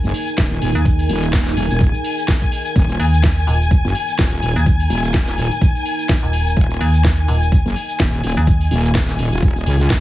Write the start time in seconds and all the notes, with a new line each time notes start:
Already playing: D#4 A#4 G#5
0.04 F#1, closed hi-hat, shaker
0.14 open hi-hat
0.27 closed hi-hat, shaker
0.38 D#1, kick, snare, shaker
0.51 closed hi-hat, shaker
0.62 D#1, open hi-hat
0.75 D#2, closed hi-hat, shaker
0.85 kick, shaker
0.99 open hi-hat, shaker
1.09 D#1, open hi-hat
1.22 closed hi-hat, shaker
1.33 kick, snare, shaker
1.47 snare, shaker
1.57 D#1, open hi-hat
1.70 D#1, closed hi-hat, shaker
1.80 kick, shaker
1.94 closed hi-hat, shaker
2.04 open hi-hat
2.18 closed hi-hat, shaker
2.28 kick, snare, shaker
2.41 kick, closed hi-hat, shaker
2.52 open hi-hat
2.65 closed hi-hat, shaker
2.76 D#1 A#5, kick, shaker
2.89 closed hi-hat, shaker
3.00 D#2, open hi-hat
3.13 closed hi-hat, shaker
3.23 kick, snare, shaker
3.38 shaker
3.47 D#1, open hi-hat
3.61 closed hi-hat, shaker
3.71 kick, shaker
3.85 F#1, closed hi-hat, shaker
3.95 open hi-hat
4.08 closed hi-hat, shaker
4.19 D#1, kick, snare, shaker
4.32 closed hi-hat, shaker
4.42 D#1, open hi-hat
4.56 D#2, closed hi-hat, shaker
4.66 kick, shaker
4.80 open hi-hat, shaker
4.90 D#1, open hi-hat
5.04 closed hi-hat, shaker
5.14 kick, snare, shaker
5.27 snare, shaker
5.38 D#1, open hi-hat
5.51 closed hi-hat, shaker
5.62 kick, shaker
5.75 closed hi-hat, shaker
5.85 open hi-hat
5.99 closed hi-hat, shaker
6.09 kick, snare, shaker
6.22 D#1, closed hi-hat, shaker
6.33 open hi-hat
6.47 closed hi-hat, shaker
6.56 D#1 D#6, kick, shaker
6.71 closed hi-hat, shaker
6.81 D#2, open hi-hat
6.94 closed hi-hat, shaker
7.04 kick, snare, shaker
7.18 shaker
7.28 D#1, open hi-hat
7.42 closed hi-hat, shaker
7.52 kick, shaker
7.66 F#1, closed hi-hat, shaker
7.76 open hi-hat
7.89 closed hi-hat, shaker
8.00 D#1, kick, snare, shaker
8.13 closed hi-hat, shaker
8.23 D#1, open hi-hat
8.37 D#2, closed hi-hat, shaker
8.47 kick, shaker
8.61 open hi-hat, shaker
8.71 D#1, open hi-hat
8.85 closed hi-hat, shaker
8.95 kick, snare, shaker
9.09 snare, closed hi-hat, shaker
9.19 D#1, open hi-hat
9.32 D#1, closed hi-hat, shaker
9.42 kick, shaker
9.56 closed hi-hat, shaker
9.66 C#2, open hi-hat
9.80 closed hi-hat, shaker
9.90 D#1, kick, snare, shaker